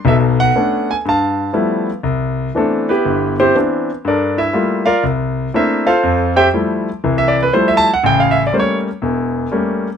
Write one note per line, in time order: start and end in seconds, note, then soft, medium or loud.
0.05 0.48 B1 medium
0.05 0.49 B2 medium
0.05 1.02 A4 medium
0.05 0.15 E5 medium
0.40 0.91 F#5 loud
0.55 0.90 A3 soft
0.55 0.90 B3 soft
0.55 0.90 C#4 soft
0.55 0.91 D4 soft
0.91 0.96 G#5 medium
1.05 1.48 G2 medium
1.05 2.02 F5 medium
1.05 1.86 A5 medium
1.53 1.89 F3 soft
1.53 1.89 G3 soft
1.53 1.89 A3 soft
1.53 1.89 B3 soft
1.53 1.89 E4 medium
2.03 2.47 C2 medium
2.55 2.89 E3 soft
2.55 2.88 A3 soft
2.55 2.88 B3 soft
2.55 2.90 C4 soft
2.55 2.90 D4 medium
2.55 2.88 A4 medium
2.89 3.35 B3 medium
2.89 3.35 E4 medium
2.89 3.35 G4 medium
2.89 3.35 B4 medium
3.05 3.48 G1 medium
3.40 3.54 C4 medium
3.40 3.55 E4 medium
3.40 3.55 G4 medium
3.40 3.55 C5 medium
3.55 3.89 E3 soft
3.55 3.89 B3 soft
3.55 3.90 C4 soft
3.55 3.90 D4 medium
4.05 4.47 G2 medium
4.05 4.38 D4 medium
4.05 4.38 A4 medium
4.05 4.38 A#4 medium
4.05 4.38 D5 medium
4.38 4.83 E4 medium
4.38 4.84 E5 medium
4.53 4.88 G3 soft
4.53 4.88 A3 soft
4.53 4.89 A#3 soft
4.53 4.84 F4 medium
4.86 5.03 F4 medium
4.86 5.03 A#4 medium
4.86 5.03 D5 medium
4.86 5.02 F5 medium
5.03 5.47 C2 medium
5.54 5.88 A3 soft
5.54 5.88 A#3 soft
5.54 5.89 C4 soft
5.54 5.89 D4 soft
5.54 5.88 E4 medium
5.54 5.86 A#4 medium
5.54 5.85 C5 medium
5.54 5.87 E5 medium
5.87 6.33 F4 medium
5.87 6.33 A4 medium
5.87 6.33 C5 medium
5.87 6.33 F5 medium
6.03 6.46 F2 medium
6.36 6.46 G4 medium
6.36 6.47 C5 medium
6.36 6.47 E5 medium
6.36 6.47 G5 medium
6.54 6.88 F3 soft
6.54 6.88 G3 soft
6.54 6.88 A3 soft
6.54 6.88 E4 medium
7.04 7.47 C2 medium
7.04 7.46 E3 medium
7.18 7.35 E5 medium
7.28 7.40 D5 medium
7.43 7.52 B4 medium
7.53 7.88 F3 soft
7.53 7.88 G3 soft
7.53 7.88 A3 soft
7.53 7.88 E4 medium
7.53 7.69 C5 medium
7.68 7.84 E5 medium
7.77 7.89 A5 loud
7.94 8.02 F#5 medium
8.03 8.46 A1 medium
8.03 8.46 C#3 medium
8.03 8.20 G5 medium
8.20 8.35 F5 medium
8.31 8.41 E5 medium
8.47 8.53 D5 medium
8.53 8.87 G3 soft
8.53 8.87 A3 soft
8.53 8.88 A#3 soft
8.53 8.88 C#4 medium
8.53 8.57 C5 medium
8.60 8.77 C#5 medium
9.02 9.45 E1 medium
9.02 9.45 E2 medium
9.52 9.86 G3 medium
9.52 9.87 A3 soft
9.52 9.87 A#3 soft
9.52 9.87 C#4 soft